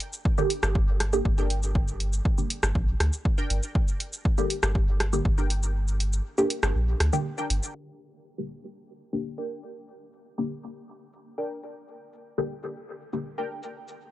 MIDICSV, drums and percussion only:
0, 0, Header, 1, 2, 480
1, 0, Start_track
1, 0, Key_signature, -2, "minor"
1, 0, Tempo, 500000
1, 1682, Time_signature, 4, 2, 24, 8
1, 13549, End_track
2, 0, Start_track
2, 0, Title_t, "Drums"
2, 3, Note_on_c, 9, 42, 81
2, 99, Note_off_c, 9, 42, 0
2, 125, Note_on_c, 9, 82, 47
2, 221, Note_off_c, 9, 82, 0
2, 242, Note_on_c, 9, 36, 123
2, 338, Note_off_c, 9, 36, 0
2, 364, Note_on_c, 9, 82, 38
2, 460, Note_off_c, 9, 82, 0
2, 482, Note_on_c, 9, 42, 83
2, 578, Note_off_c, 9, 42, 0
2, 604, Note_on_c, 9, 37, 76
2, 604, Note_on_c, 9, 82, 48
2, 700, Note_off_c, 9, 37, 0
2, 700, Note_off_c, 9, 82, 0
2, 722, Note_on_c, 9, 36, 121
2, 818, Note_off_c, 9, 36, 0
2, 963, Note_on_c, 9, 37, 60
2, 963, Note_on_c, 9, 42, 87
2, 1059, Note_off_c, 9, 37, 0
2, 1059, Note_off_c, 9, 42, 0
2, 1084, Note_on_c, 9, 82, 47
2, 1180, Note_off_c, 9, 82, 0
2, 1202, Note_on_c, 9, 36, 119
2, 1298, Note_off_c, 9, 36, 0
2, 1325, Note_on_c, 9, 82, 27
2, 1421, Note_off_c, 9, 82, 0
2, 1443, Note_on_c, 9, 42, 87
2, 1539, Note_off_c, 9, 42, 0
2, 1565, Note_on_c, 9, 82, 49
2, 1661, Note_off_c, 9, 82, 0
2, 1682, Note_on_c, 9, 36, 120
2, 1778, Note_off_c, 9, 36, 0
2, 1805, Note_on_c, 9, 82, 38
2, 1901, Note_off_c, 9, 82, 0
2, 1922, Note_on_c, 9, 42, 78
2, 2018, Note_off_c, 9, 42, 0
2, 2045, Note_on_c, 9, 82, 48
2, 2141, Note_off_c, 9, 82, 0
2, 2162, Note_on_c, 9, 36, 119
2, 2258, Note_off_c, 9, 36, 0
2, 2285, Note_on_c, 9, 82, 40
2, 2381, Note_off_c, 9, 82, 0
2, 2403, Note_on_c, 9, 42, 84
2, 2499, Note_off_c, 9, 42, 0
2, 2525, Note_on_c, 9, 37, 80
2, 2525, Note_on_c, 9, 82, 48
2, 2621, Note_off_c, 9, 37, 0
2, 2621, Note_off_c, 9, 82, 0
2, 2642, Note_on_c, 9, 36, 115
2, 2738, Note_off_c, 9, 36, 0
2, 2883, Note_on_c, 9, 37, 61
2, 2883, Note_on_c, 9, 42, 82
2, 2979, Note_off_c, 9, 37, 0
2, 2979, Note_off_c, 9, 42, 0
2, 3005, Note_on_c, 9, 82, 49
2, 3101, Note_off_c, 9, 82, 0
2, 3122, Note_on_c, 9, 36, 119
2, 3218, Note_off_c, 9, 36, 0
2, 3245, Note_on_c, 9, 82, 27
2, 3341, Note_off_c, 9, 82, 0
2, 3362, Note_on_c, 9, 42, 84
2, 3458, Note_off_c, 9, 42, 0
2, 3484, Note_on_c, 9, 82, 50
2, 3580, Note_off_c, 9, 82, 0
2, 3602, Note_on_c, 9, 36, 119
2, 3698, Note_off_c, 9, 36, 0
2, 3725, Note_on_c, 9, 82, 42
2, 3821, Note_off_c, 9, 82, 0
2, 3842, Note_on_c, 9, 42, 81
2, 3938, Note_off_c, 9, 42, 0
2, 3964, Note_on_c, 9, 82, 49
2, 4060, Note_off_c, 9, 82, 0
2, 4082, Note_on_c, 9, 36, 118
2, 4178, Note_off_c, 9, 36, 0
2, 4204, Note_on_c, 9, 82, 39
2, 4300, Note_off_c, 9, 82, 0
2, 4322, Note_on_c, 9, 42, 81
2, 4418, Note_off_c, 9, 42, 0
2, 4444, Note_on_c, 9, 37, 83
2, 4444, Note_on_c, 9, 82, 49
2, 4540, Note_off_c, 9, 37, 0
2, 4540, Note_off_c, 9, 82, 0
2, 4561, Note_on_c, 9, 36, 115
2, 4657, Note_off_c, 9, 36, 0
2, 4802, Note_on_c, 9, 37, 66
2, 4802, Note_on_c, 9, 42, 80
2, 4898, Note_off_c, 9, 37, 0
2, 4898, Note_off_c, 9, 42, 0
2, 4924, Note_on_c, 9, 82, 51
2, 5020, Note_off_c, 9, 82, 0
2, 5041, Note_on_c, 9, 36, 116
2, 5137, Note_off_c, 9, 36, 0
2, 5165, Note_on_c, 9, 82, 29
2, 5261, Note_off_c, 9, 82, 0
2, 5282, Note_on_c, 9, 42, 81
2, 5378, Note_off_c, 9, 42, 0
2, 5405, Note_on_c, 9, 82, 51
2, 5501, Note_off_c, 9, 82, 0
2, 5644, Note_on_c, 9, 82, 42
2, 5740, Note_off_c, 9, 82, 0
2, 5762, Note_on_c, 9, 42, 79
2, 5858, Note_off_c, 9, 42, 0
2, 5884, Note_on_c, 9, 82, 50
2, 5980, Note_off_c, 9, 82, 0
2, 6125, Note_on_c, 9, 82, 42
2, 6221, Note_off_c, 9, 82, 0
2, 6243, Note_on_c, 9, 42, 81
2, 6339, Note_off_c, 9, 42, 0
2, 6365, Note_on_c, 9, 37, 86
2, 6365, Note_on_c, 9, 82, 51
2, 6461, Note_off_c, 9, 37, 0
2, 6461, Note_off_c, 9, 82, 0
2, 6723, Note_on_c, 9, 37, 66
2, 6723, Note_on_c, 9, 42, 83
2, 6819, Note_off_c, 9, 37, 0
2, 6819, Note_off_c, 9, 42, 0
2, 6845, Note_on_c, 9, 82, 50
2, 6941, Note_off_c, 9, 82, 0
2, 7085, Note_on_c, 9, 82, 30
2, 7181, Note_off_c, 9, 82, 0
2, 7202, Note_on_c, 9, 42, 83
2, 7298, Note_off_c, 9, 42, 0
2, 7325, Note_on_c, 9, 82, 54
2, 7421, Note_off_c, 9, 82, 0
2, 7442, Note_on_c, 9, 49, 78
2, 7538, Note_off_c, 9, 49, 0
2, 7564, Note_on_c, 9, 82, 40
2, 7660, Note_off_c, 9, 82, 0
2, 7804, Note_on_c, 9, 82, 47
2, 7900, Note_off_c, 9, 82, 0
2, 8044, Note_on_c, 9, 82, 38
2, 8140, Note_off_c, 9, 82, 0
2, 8284, Note_on_c, 9, 82, 48
2, 8380, Note_off_c, 9, 82, 0
2, 8764, Note_on_c, 9, 82, 47
2, 8860, Note_off_c, 9, 82, 0
2, 9245, Note_on_c, 9, 82, 50
2, 9341, Note_off_c, 9, 82, 0
2, 9484, Note_on_c, 9, 82, 40
2, 9580, Note_off_c, 9, 82, 0
2, 9724, Note_on_c, 9, 82, 49
2, 9820, Note_off_c, 9, 82, 0
2, 9964, Note_on_c, 9, 82, 39
2, 10060, Note_off_c, 9, 82, 0
2, 10204, Note_on_c, 9, 82, 47
2, 10300, Note_off_c, 9, 82, 0
2, 10684, Note_on_c, 9, 82, 51
2, 10780, Note_off_c, 9, 82, 0
2, 10925, Note_on_c, 9, 82, 28
2, 11021, Note_off_c, 9, 82, 0
2, 11165, Note_on_c, 9, 82, 51
2, 11261, Note_off_c, 9, 82, 0
2, 11405, Note_on_c, 9, 82, 38
2, 11501, Note_off_c, 9, 82, 0
2, 11644, Note_on_c, 9, 82, 47
2, 11740, Note_off_c, 9, 82, 0
2, 11884, Note_on_c, 9, 82, 38
2, 11980, Note_off_c, 9, 82, 0
2, 12125, Note_on_c, 9, 82, 47
2, 12221, Note_off_c, 9, 82, 0
2, 12605, Note_on_c, 9, 82, 49
2, 12701, Note_off_c, 9, 82, 0
2, 12845, Note_on_c, 9, 82, 27
2, 12941, Note_off_c, 9, 82, 0
2, 13084, Note_on_c, 9, 82, 51
2, 13180, Note_off_c, 9, 82, 0
2, 13325, Note_on_c, 9, 82, 38
2, 13421, Note_off_c, 9, 82, 0
2, 13549, End_track
0, 0, End_of_file